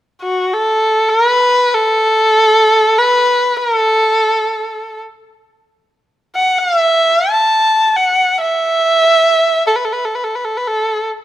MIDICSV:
0, 0, Header, 1, 2, 480
1, 0, Start_track
1, 0, Tempo, 500000
1, 10796, End_track
2, 0, Start_track
2, 0, Title_t, "Erhu"
2, 0, Program_c, 0, 110
2, 211, Note_on_c, 0, 66, 63
2, 510, Note_on_c, 0, 69, 71
2, 524, Note_off_c, 0, 66, 0
2, 1042, Note_on_c, 0, 70, 83
2, 1056, Note_off_c, 0, 69, 0
2, 1234, Note_off_c, 0, 70, 0
2, 1234, Note_on_c, 0, 71, 83
2, 1673, Note_on_c, 0, 69, 86
2, 1687, Note_off_c, 0, 71, 0
2, 2866, Note_on_c, 0, 71, 78
2, 2880, Note_off_c, 0, 69, 0
2, 3423, Note_on_c, 0, 70, 72
2, 3438, Note_off_c, 0, 71, 0
2, 3606, Note_off_c, 0, 70, 0
2, 3606, Note_on_c, 0, 69, 72
2, 4795, Note_off_c, 0, 69, 0
2, 6100, Note_on_c, 0, 78, 65
2, 6321, Note_on_c, 0, 77, 78
2, 6335, Note_off_c, 0, 78, 0
2, 6503, Note_off_c, 0, 77, 0
2, 6503, Note_on_c, 0, 76, 78
2, 7012, Note_on_c, 0, 81, 70
2, 7026, Note_off_c, 0, 76, 0
2, 7645, Note_on_c, 0, 78, 69
2, 7659, Note_off_c, 0, 81, 0
2, 8061, Note_off_c, 0, 78, 0
2, 8066, Note_on_c, 0, 76, 85
2, 9258, Note_off_c, 0, 76, 0
2, 9281, Note_on_c, 0, 69, 49
2, 9369, Note_on_c, 0, 71, 49
2, 9384, Note_off_c, 0, 69, 0
2, 9450, Note_on_c, 0, 69, 48
2, 9465, Note_off_c, 0, 71, 0
2, 9528, Note_on_c, 0, 71, 50
2, 9542, Note_off_c, 0, 69, 0
2, 9643, Note_on_c, 0, 69, 47
2, 9658, Note_off_c, 0, 71, 0
2, 9741, Note_on_c, 0, 71, 51
2, 9755, Note_off_c, 0, 69, 0
2, 9830, Note_on_c, 0, 69, 48
2, 9844, Note_off_c, 0, 71, 0
2, 9938, Note_on_c, 0, 71, 45
2, 9953, Note_off_c, 0, 69, 0
2, 10027, Note_on_c, 0, 69, 50
2, 10041, Note_off_c, 0, 71, 0
2, 10145, Note_on_c, 0, 71, 50
2, 10160, Note_off_c, 0, 69, 0
2, 10244, Note_on_c, 0, 69, 61
2, 10259, Note_off_c, 0, 71, 0
2, 10623, Note_off_c, 0, 69, 0
2, 10796, End_track
0, 0, End_of_file